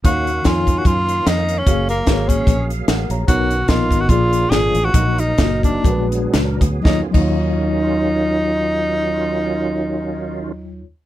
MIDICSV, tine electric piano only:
0, 0, Header, 1, 2, 480
1, 0, Start_track
1, 0, Key_signature, -6, "minor"
1, 0, Tempo, 404585
1, 53, Time_signature, 4, 2, 24, 8
1, 4853, Tempo, 430108
1, 6293, Tempo, 475059
1, 7253, Tempo, 515021
1, 7733, Tempo, 534283
1, 11518, End_track
2, 0, Start_track
2, 0, Title_t, "Tine electric piano"
2, 0, Program_c, 0, 4
2, 56, Note_on_c, 0, 63, 60
2, 64, Note_on_c, 0, 66, 55
2, 64, Note_on_c, 0, 73, 57
2, 65, Note_on_c, 0, 51, 53
2, 72, Note_on_c, 0, 77, 66
2, 351, Note_off_c, 0, 63, 0
2, 355, Note_off_c, 0, 66, 0
2, 355, Note_off_c, 0, 73, 0
2, 359, Note_off_c, 0, 77, 0
2, 528, Note_on_c, 0, 63, 65
2, 531, Note_on_c, 0, 65, 60
2, 538, Note_on_c, 0, 73, 59
2, 548, Note_on_c, 0, 80, 72
2, 758, Note_off_c, 0, 51, 0
2, 1089, Note_off_c, 0, 63, 0
2, 1091, Note_off_c, 0, 65, 0
2, 1094, Note_off_c, 0, 73, 0
2, 1099, Note_off_c, 0, 80, 0
2, 1973, Note_on_c, 0, 58, 61
2, 1979, Note_on_c, 0, 66, 55
2, 1989, Note_on_c, 0, 68, 58
2, 1994, Note_on_c, 0, 77, 63
2, 2270, Note_off_c, 0, 58, 0
2, 2274, Note_off_c, 0, 66, 0
2, 2278, Note_off_c, 0, 68, 0
2, 2281, Note_off_c, 0, 77, 0
2, 2446, Note_on_c, 0, 58, 67
2, 2452, Note_on_c, 0, 66, 56
2, 2459, Note_on_c, 0, 68, 55
2, 2467, Note_on_c, 0, 71, 59
2, 2526, Note_off_c, 0, 71, 0
2, 2526, Note_on_c, 0, 73, 73
2, 3007, Note_off_c, 0, 58, 0
2, 3010, Note_off_c, 0, 66, 0
2, 3013, Note_off_c, 0, 68, 0
2, 3047, Note_off_c, 0, 73, 0
2, 3422, Note_on_c, 0, 78, 52
2, 3428, Note_on_c, 0, 70, 49
2, 3668, Note_off_c, 0, 78, 0
2, 3671, Note_off_c, 0, 70, 0
2, 3689, Note_on_c, 0, 82, 55
2, 3698, Note_on_c, 0, 73, 46
2, 3891, Note_on_c, 0, 59, 64
2, 3895, Note_off_c, 0, 73, 0
2, 3897, Note_on_c, 0, 63, 57
2, 3903, Note_on_c, 0, 47, 52
2, 3906, Note_on_c, 0, 70, 52
2, 3909, Note_on_c, 0, 73, 67
2, 4137, Note_off_c, 0, 82, 0
2, 4185, Note_off_c, 0, 59, 0
2, 4188, Note_off_c, 0, 63, 0
2, 4193, Note_off_c, 0, 70, 0
2, 4194, Note_off_c, 0, 73, 0
2, 4379, Note_on_c, 0, 59, 66
2, 4381, Note_on_c, 0, 63, 63
2, 4386, Note_on_c, 0, 70, 59
2, 4391, Note_on_c, 0, 75, 76
2, 4594, Note_off_c, 0, 47, 0
2, 4859, Note_off_c, 0, 59, 0
2, 4860, Note_off_c, 0, 63, 0
2, 4862, Note_off_c, 0, 70, 0
2, 4862, Note_on_c, 0, 58, 61
2, 4864, Note_off_c, 0, 75, 0
2, 4868, Note_on_c, 0, 65, 62
2, 4872, Note_on_c, 0, 46, 50
2, 4878, Note_on_c, 0, 68, 61
2, 4879, Note_on_c, 0, 74, 68
2, 5545, Note_off_c, 0, 46, 0
2, 5628, Note_off_c, 0, 58, 0
2, 5631, Note_off_c, 0, 65, 0
2, 5636, Note_off_c, 0, 68, 0
2, 5637, Note_off_c, 0, 74, 0
2, 5795, Note_on_c, 0, 58, 60
2, 5800, Note_on_c, 0, 63, 52
2, 5805, Note_on_c, 0, 46, 51
2, 5810, Note_on_c, 0, 66, 56
2, 5818, Note_on_c, 0, 75, 66
2, 6099, Note_off_c, 0, 58, 0
2, 6102, Note_off_c, 0, 63, 0
2, 6107, Note_off_c, 0, 66, 0
2, 6110, Note_off_c, 0, 75, 0
2, 6299, Note_on_c, 0, 58, 62
2, 6302, Note_on_c, 0, 63, 55
2, 6306, Note_on_c, 0, 65, 45
2, 6313, Note_on_c, 0, 75, 69
2, 6359, Note_on_c, 0, 66, 59
2, 6361, Note_off_c, 0, 65, 0
2, 6511, Note_off_c, 0, 46, 0
2, 6753, Note_off_c, 0, 66, 0
2, 6753, Note_on_c, 0, 56, 58
2, 6755, Note_on_c, 0, 62, 61
2, 6764, Note_off_c, 0, 58, 0
2, 6765, Note_on_c, 0, 66, 58
2, 6766, Note_off_c, 0, 63, 0
2, 6766, Note_on_c, 0, 46, 51
2, 6771, Note_off_c, 0, 75, 0
2, 6773, Note_on_c, 0, 70, 59
2, 6819, Note_on_c, 0, 71, 72
2, 6831, Note_off_c, 0, 70, 0
2, 7479, Note_off_c, 0, 46, 0
2, 7554, Note_off_c, 0, 56, 0
2, 7555, Note_off_c, 0, 62, 0
2, 7559, Note_off_c, 0, 66, 0
2, 7584, Note_off_c, 0, 71, 0
2, 7708, Note_on_c, 0, 54, 68
2, 7732, Note_on_c, 0, 63, 57
2, 7738, Note_on_c, 0, 39, 65
2, 7749, Note_on_c, 0, 65, 58
2, 7768, Note_on_c, 0, 73, 74
2, 7867, Note_off_c, 0, 54, 0
2, 7880, Note_off_c, 0, 63, 0
2, 7883, Note_off_c, 0, 39, 0
2, 7889, Note_off_c, 0, 65, 0
2, 7899, Note_off_c, 0, 73, 0
2, 7974, Note_on_c, 0, 54, 69
2, 7997, Note_on_c, 0, 63, 63
2, 8005, Note_on_c, 0, 39, 69
2, 8016, Note_on_c, 0, 65, 62
2, 8038, Note_on_c, 0, 73, 75
2, 11280, Note_off_c, 0, 54, 0
2, 11303, Note_off_c, 0, 63, 0
2, 11311, Note_off_c, 0, 39, 0
2, 11322, Note_off_c, 0, 65, 0
2, 11344, Note_off_c, 0, 73, 0
2, 11518, End_track
0, 0, End_of_file